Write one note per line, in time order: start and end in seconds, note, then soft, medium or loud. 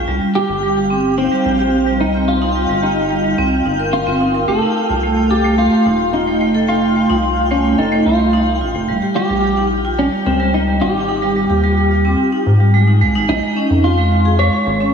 0.00 13.30 F4 medium
0.00 13.30 G5 medium
0.08 0.19 C2 medium
0.08 0.19 G3 medium
0.22 0.28 G3 medium
0.35 1.14 G4 loud
0.35 0.48 G4 medium
0.49 1.28 G1 medium
0.63 0.74 G3 medium
0.77 0.90 G3 medium
0.90 1.03 C4 medium
1.18 2.00 C4 medium
1.18 1.29 D#4 medium
1.32 1.43 G3 medium
1.45 2.02 A#1 loud
1.45 1.52 G3 medium
1.59 1.72 G4 medium
1.87 1.98 G3 medium
2.00 2.66 C2 medium
2.00 2.13 G3 medium
2.00 2.29 D#4 medium
2.14 2.27 C4 medium
2.28 2.85 F4 loud
2.42 2.53 D#4 medium
2.55 2.66 G3 medium
2.69 3.34 G1 medium
2.69 2.76 G3 medium
2.83 3.34 D#4 medium
2.83 2.96 G4 medium
3.11 3.22 G3 medium
3.24 3.37 G3 medium
3.38 3.61 C2 medium
3.38 3.51 C4 medium
3.65 4.06 G1 medium
3.65 3.72 D#4 medium
3.79 3.90 A#4 medium
3.93 4.48 F4 loud
3.93 4.04 A#4 medium
4.07 4.44 G1 medium
4.07 4.20 C4 medium
4.21 4.34 D#4 medium
4.34 4.47 A#4 medium
4.48 4.60 F1 loud
4.48 4.61 A3 medium
4.48 5.30 A4 loud
4.62 4.75 D#4 medium
4.89 5.68 C2 medium
4.89 5.00 F4 medium
5.03 5.14 A3 medium
5.17 5.23 A3 medium
5.30 5.58 G4 loud
5.30 5.44 A4 medium
5.44 5.57 A3 loud
5.58 5.69 A3 medium
5.58 6.15 F4 medium
5.72 5.85 A3 medium
5.86 6.42 D#1 loud
5.86 5.99 D#4 medium
6.13 6.70 D#4 medium
6.13 6.24 F4 medium
6.27 6.38 A3 medium
6.41 7.06 F1 medium
6.41 6.47 A3 medium
6.55 6.68 A4 medium
6.68 6.81 A3 medium
6.68 7.47 F4 medium
6.82 6.93 A3 medium
6.96 7.09 A3 medium
7.10 7.75 C2 medium
7.10 7.23 D#4 medium
7.37 7.48 F4 medium
7.51 7.62 A3 medium
7.51 7.77 C#4 medium
7.65 7.71 A3 medium
7.78 8.01 F1 medium
7.78 8.07 D#4 medium
7.78 7.91 A4 medium
7.92 8.05 A3 loud
8.06 8.62 C2 medium
8.06 8.17 A3 medium
8.06 8.57 F4 medium
8.20 8.33 A3 medium
8.33 8.47 D#4 medium
8.61 8.72 A1 loud
8.61 8.72 F4 medium
8.75 8.86 F1 loud
8.75 8.86 A3 medium
8.88 9.00 D#1 loud
8.88 8.95 G3 medium
9.02 9.15 G4 medium
9.16 9.29 G3 loud
9.16 9.67 G4 loud
9.30 10.09 A#1 medium
9.30 9.41 G3 medium
9.44 9.57 G3 medium
9.57 9.70 D#4 medium
9.85 9.96 F4 medium
9.99 10.10 G3 medium
9.99 10.06 C#4 medium
10.12 10.19 G3 medium
10.26 10.83 C#2 medium
10.26 10.54 C4 medium
10.26 10.39 G4 medium
10.40 10.52 G3 medium
10.54 10.65 G3 medium
10.54 10.61 D#4 loud
10.67 10.80 G3 medium
10.81 11.46 G#1 medium
10.81 10.94 D#4 medium
10.81 12.70 G4 loud
11.08 11.20 D#4 medium
11.22 11.33 G3 medium
11.36 11.43 G3 medium
11.50 12.15 D#2 medium
11.50 11.63 G4 medium
11.64 11.76 G3 medium
11.77 11.88 G3 medium
11.91 12.04 G3 medium
12.05 12.18 C4 medium
12.32 12.44 D#4 medium
12.46 13.03 G#2 medium
12.60 12.73 G3 medium
12.74 12.85 G#3 medium
12.88 12.99 D#4 medium
13.01 13.16 C2 medium
13.01 13.12 G#3 loud
13.15 13.27 G#1 medium
13.15 13.26 D#4 loud
13.29 13.40 A#1 loud
13.29 13.40 G#3 medium
13.29 13.86 D#4 loud
13.43 13.56 G#3 medium
13.56 13.70 C#4 medium
13.70 14.49 F2 medium
13.84 14.35 F4 medium
13.84 13.95 F4 medium
13.98 14.09 G#3 medium
14.12 14.18 G#3 medium
14.25 14.38 G#4 medium
14.39 14.52 G#3 loud
14.39 14.94 C#5 loud
14.53 14.64 G#3 medium
14.66 14.94 G#1 loud
14.66 14.80 G#3 medium
14.80 14.93 C#4 medium